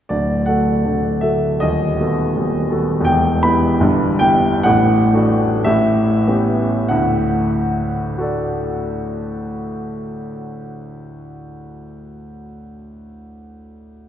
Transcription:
0.09 D1 D2 D5
0.46 A3 F#4 A4 F#5
0.86 D1 D2
1.21 A3 F#4 A4 E5
1.60 D#1 D#2 D#5
2.00 B3 F#4 A4
2.37 D#1 D#2
2.71 B3 F#4 A4
3.01 E2 G5
3.06 E1
3.43 B3 E4 G4 B5
3.80 G1 G2
4.19 B3 E4 G4 G5
4.63 A1 A2 F#5
5.14 A3 D4 F#4
5.64 A1 A2 E5
6.28 B3 C#4 G4
6.89 D2 A2 F#5
8.18 F#4 A4 D5

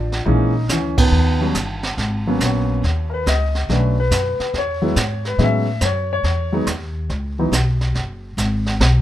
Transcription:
Already playing: A1 F3 D4
0.12 snare
0.26 A#1 E3 G#3 A#3 C#4 D#4, brush sweep, kick
0.69 D2 E3 C#4, snare, hi-hat pedal
0.98 D#3 B3, kick, ride
1.11 D#2, brush sweep
1.41 F#3 G3 B3 C#4
1.55 G1, snare, hi-hat pedal
1.83 snare
1.97 G#1, brush sweep, kick, snare
2.27 F#3 A#3 B3 C#4
2.40 A#1, kick, snare, hi-hat pedal
2.46 C#5
2.83 D#2, brush sweep, kick, snare
3.10 A#4 B4
3.26 C#2 D#5, kick, snare, hi-hat pedal
3.55 snare
3.69 B1 F#3 A3 C#4 D4 B4, brush sweep, kick, snare
4.00 B4
4.11 F#2, kick, snare, hi-hat pedal
4.39 muted upright bass stroke, snare
4.54 E2, brush sweep, kick, snare
4.58 C#5
4.82 F#3 G#3 B3 E4
4.96 G#2, kick, snare, hi-hat pedal
5.25 B4, snare
5.38 A2 F#3 G#3 B3 C#4 D#5, brush sweep, kick, snare
5.43 E5
5.81 F#2 C5, kick, snare, hi-hat pedal
5.85 C#5
6.13 C#5
6.24 E2, brush sweep, kick, snare
6.52 F#3 G#3 B3 D#4
6.67 D#2, kick, snare, hi-hat pedal
7.09 C#2, brush sweep, kick, snare
7.39 E3 F#3 B3 D#4
7.52 B1, kick, snare, hi-hat pedal
7.81 snare
7.95 F#1, brush sweep, kick, snare
8.37 G#1, kick, snare, hi-hat pedal
8.66 snare
8.80 B1, snare

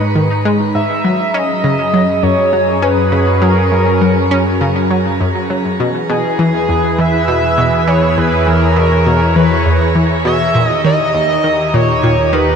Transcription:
Already playing: G#2 G#3 D#4 B4 A#5
0.15 D#3
0.45 G#3
0.75 G#2 E5
1.04 F#2 F#3 C#4 G#4
1.34 C#4 D#5
1.64 C#3
1.94 F#3
2.23 F#2 C#5
2.53 F#3
2.82 C#4 B4
3.12 C#3
3.42 F#3 A#4
3.71 F#2
4.01 F#3
4.31 C#4
4.61 C#3
4.91 F#3
5.20 F#2
5.50 F#3
5.79 E2 B2 E3 E4 G#4 B4
6.09 B2 G#4
6.39 E3
6.69 E2
6.99 E3 E5
7.28 B2
7.58 B2
7.87 E3 C#5
8.17 E2 B4 C#5
8.47 E3 A#4
8.76 B2
9.06 B2
9.36 E3 B4
9.66 E2
9.95 E3
10.25 B2 E5
10.55 D#2 A#2 D#3 D#4 G4 A#5
10.66 D#5
10.84 D#3 D#5
11.14 D#2
11.44 D#3
11.74 A#2 C#5
12.03 A#2
12.33 D#3 B4

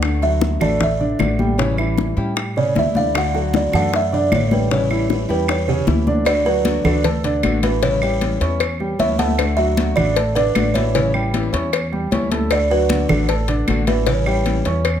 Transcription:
Already playing: D2 D3 D5 F#5
0.02 D3 A3 D4 F#4, high bongo, high conga, claves
0.22 F#3 F#4 E5 F#5, high bongo, high conga
0.41 high bongo, high conga
0.60 A1 A3 D4 F#4 A4 D5 A5, high bongo, high conga, low conga, claves
0.80 E5, muted nylon-string guitar stroke, high bongo, high conga, low conga
1.00 D3 D4 D5, high conga
1.19 A1 D3 A3 D4 F#4, high bongo, low bongo, high conga, claves
1.39 G3 G4 G5, high bongo, high conga
1.58 C#3 E3 G3 C#4 E4 C#5, high bongo, high conga
1.78 E3 E4 E5, high bongo, high conga, claves
1.98 high bongo, high conga
2.17 A2 G3 C#4 E4 G4 G5, high bongo, high conga
2.36 muted nylon-string guitar stroke, high bongo, high conga, claves
2.56 C#3 C#4 C#5 D5, high conga
2.75 D2 E3 G3 C#4 E4 E5, high bongo, low bongo, high conga
2.95 D3 D5 F5, high bongo, high conga
3.14 D3 A3 D4 F#4 F#5, high bongo, high conga, claves
3.34 F#3 F#4 A4 F#5, high bongo, high conga
3.54 D5, high bongo, high conga
3.72 F#2 A3 D4 F#4 A4 F#5 A5, high bongo, high conga, low conga, claves
3.93 E5, muted nylon-string guitar stroke, high bongo, high conga
4.12 D3 D4 D5, high conga
4.31 A1 D3 A3 D4 F#4 C#5, high bongo, low bongo, high conga, claves
4.51 G3 G4 B4 G5, high bongo, high conga
4.71 C#3 E3 G3 C#4 E4 C#5, high bongo, high conga
4.90 E3 E4 E5, high bongo, high conga, claves
5.10 G4, high bongo, high conga
5.29 E2 G3 C#4 E4 G4 B4 G5, high bongo, high conga
5.48 C#5, muted nylon-string guitar stroke, high bongo, high conga, claves
5.68 C#3 C#4 G4 C#5, high conga
5.86 D2 E3 G3 C#4 E4 E5, high bongo, low bongo, high conga
6.07 D3 D4 D5, high bongo, high conga
6.25 D3 A3 D4 F#4 D5, cowbell, high conga, claves
6.45 F#3 A3 D4 F#4 B4 F#5, high conga
6.65 D3 A3 D4 F#4, cowbell, high conga
6.85 D2 D3 A3 D4 F#4 A4 D5, high conga, low conga, claves
7.04 A3 A4 A5, muted nylon-string guitar stroke, cowbell, high conga, low conga
7.24 D3 D4 D5, cowbell, high conga
7.43 A1 D3 A3 D4 F#4, cowbell, high conga, claves
7.63 E3 A3 D4 E4 F#4 B4 E5, cowbell, high conga
7.82 C#3 E3 G3 C#4 E4 C#5, cowbell, high conga
8.02 G3 C#4 E4 G4 C#5 G5, high conga, claves
8.21 E3 G3 C#4 E4, cowbell, high conga
8.40 E2 G3 C#4 E4 C#5 C#6, cowbell, high conga
8.60 muted nylon-string guitar stroke, cowbell, high conga, claves
8.80 G3 G4 G5, high conga
8.99 D2 E3 G3 C#4 E4 C#5 E5 C#6, cowbell, high conga
9.18 G3 A3 C#4 E4 A4 F#5 A5, cowbell, high conga
9.38 D3 A3 D4 F#4, cowbell, high conga, claves
9.57 F#3 A3 D4 F#4 E5 F#5, high conga
9.77 D3 A3 D4 F#4, cowbell, high conga
9.96 A1 D3 A3 D4 F#4 D5, high conga, low conga, claves
10.16 A3 A4 A5, muted nylon-string guitar stroke, cowbell, high conga
10.35 D3 D4 B4 D5, cowbell, high conga
10.55 A1 D3 A3 D4 F#4, cowbell, high conga, claves
10.74 E3 A3 D4 E4 F#4 C#5 E5, cowbell, high conga
10.94 C#3 E3 G3 C#4 E4 C#5, cowbell, high conga
11.14 G3 C#4 E4 G4 G5, high conga, claves
11.34 E3 G3 C#4 E4, cowbell, high conga
11.53 E2 G3 C#4 E4 C#5 C#6, cowbell, high conga
11.72 muted nylon-string guitar stroke, cowbell, high conga, claves
11.92 G3 G4 G5, high conga
12.11 D2 E3 G3 C#4 E4 C#5 C#6, cowbell, high conga
12.31 G3 A3 C#4 E4 A4 A5, cowbell, high conga
12.50 D3 A3 D4 F#4 D5, cowbell, high conga, claves
12.70 F#3 A3 D4 F#4 B4 F#5, high conga
12.89 D3 A3 D4 F#4, cowbell, high conga
13.09 A1 D3 A3 D4 F#4 A4 D5, high conga, low conga, claves
13.29 A3 A4 A5, muted nylon-string guitar stroke, cowbell, high conga
13.48 D3 D4 D5, cowbell, high conga
13.68 A1 D3 A3 D4 F#4, cowbell, high conga, claves
13.87 E3 A3 D4 E4 F#4 B4 E5, cowbell, high conga
14.06 C#3 E3 G3 C#4 E4 C#5, cowbell, high conga
14.26 G3 C#4 E4 G4 C#5 G5, high conga, claves
14.46 E3 G3 C#4 E4, cowbell, high conga
14.65 E2 G3 C#4 E4 C#5 C#6, cowbell, high conga
14.85 muted nylon-string guitar stroke, cowbell, high conga, claves

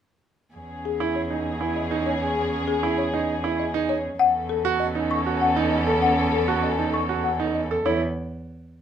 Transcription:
0.54 E2 C#4 G#4
0.85 G#4
1.00 E4
1.16 C#5
1.30 D#4
1.61 E4
1.76 D#5
1.91 D#4
2.07 C#5
2.68 G#4
2.83 E4
2.98 C#5
3.13 D#4
3.44 E4
3.60 D#5
3.74 D#4
3.89 C#5
4.19 E2 C#4 A4 F#5
4.49 A4
4.65 F#4
4.80 D#5
4.95 D#4
5.11 C#6
5.26 F#4
5.41 F#5
5.56 D#4
5.72 D#5
5.87 A4
6.02 F#5
6.32 A4
6.48 F#4
6.63 D#5
6.79 D#4
6.94 C#6
7.09 F#4
7.24 F#5
7.40 D#4
7.55 D#5
7.71 A4
7.85 E2 E4 C#5

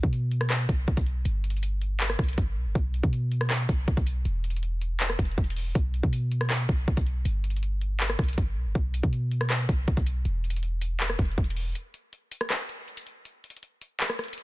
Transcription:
0.03 B2, kick
0.13 closed hi-hat
0.31 closed hi-hat
0.41 cross-stick
0.50 cross-stick, clap
0.69 B1, kick, closed hi-hat
0.88 B1, kick, closed hi-hat
0.97 B1, kick, closed hi-hat
1.06 closed hi-hat
1.25 G1, closed hi-hat
1.44 closed hi-hat
1.50 closed hi-hat
1.57 closed hi-hat
1.63 closed hi-hat
1.82 closed hi-hat
2.00 clap, closed hi-hat
2.10 cross-stick
2.19 B1, kick, cross-stick, closed hi-hat
2.24 closed hi-hat
2.28 closed hi-hat
2.33 closed hi-hat
2.38 G1, kick, closed hi-hat
2.57 B1
2.66 G1
2.75 B1, kick, closed hi-hat
2.94 closed hi-hat
3.03 B2, kick
3.13 closed hi-hat
3.32 closed hi-hat
3.41 cross-stick
3.50 cross-stick, clap
3.69 B1, kick, closed hi-hat
3.88 B1, kick, closed hi-hat
3.97 B1, kick, closed hi-hat
4.07 closed hi-hat
4.25 E1, closed hi-hat
4.44 closed hi-hat
4.50 closed hi-hat
4.57 closed hi-hat
4.63 closed hi-hat
4.82 closed hi-hat
5.00 clap, closed hi-hat
5.10 cross-stick
5.19 E1, kick, closed hi-hat
5.25 closed hi-hat
5.32 closed hi-hat
5.38 E1, kick, closed hi-hat
5.44 closed hi-hat
5.50 closed hi-hat
5.57 open hi-hat
5.75 B1, kick, closed hi-hat
5.94 closed hi-hat
6.03 B2, kick
6.13 closed hi-hat
6.32 closed hi-hat
6.41 cross-stick
6.50 cross-stick, clap
6.69 B1, kick, closed hi-hat
6.88 B1, kick, closed hi-hat
6.97 B1, kick, closed hi-hat
7.07 closed hi-hat
7.25 G1, closed hi-hat
7.44 closed hi-hat
7.50 closed hi-hat
7.57 closed hi-hat
7.63 closed hi-hat
7.81 closed hi-hat
8.00 clap, closed hi-hat
8.10 cross-stick
8.19 B1, kick, cross-stick, closed hi-hat
8.24 closed hi-hat
8.28 closed hi-hat
8.33 closed hi-hat
8.38 G1, kick, closed hi-hat
8.56 B1
8.66 G1
8.75 B1, kick, closed hi-hat
8.94 closed hi-hat
9.03 B2, kick
9.13 closed hi-hat
9.31 closed hi-hat
9.41 cross-stick
9.50 cross-stick, clap
9.69 B1, kick, closed hi-hat
9.88 B1, kick, closed hi-hat
9.97 B1, kick, closed hi-hat
10.06 closed hi-hat
10.25 E1, closed hi-hat
10.44 closed hi-hat
10.50 closed hi-hat
10.56 closed hi-hat
10.63 closed hi-hat
10.81 closed hi-hat
11.00 clap, closed hi-hat
11.10 cross-stick
11.19 E1, kick, closed hi-hat
11.25 closed hi-hat
11.32 closed hi-hat
11.38 E1, kick, closed hi-hat
11.44 closed hi-hat
11.50 closed hi-hat
11.57 open hi-hat
11.75 closed hi-hat
11.94 closed hi-hat
12.13 closed hi-hat
12.32 closed hi-hat
12.41 cross-stick
12.50 cross-stick, clap
12.69 closed hi-hat
12.88 closed hi-hat
12.97 closed hi-hat
13.07 closed hi-hat
13.25 closed hi-hat
13.44 closed hi-hat
13.50 closed hi-hat
13.57 closed hi-hat
13.63 closed hi-hat
13.81 closed hi-hat
14.00 clap, closed hi-hat
14.10 cross-stick
14.19 cross-stick, closed hi-hat
14.24 closed hi-hat
14.28 closed hi-hat
14.33 closed hi-hat
14.38 closed hi-hat

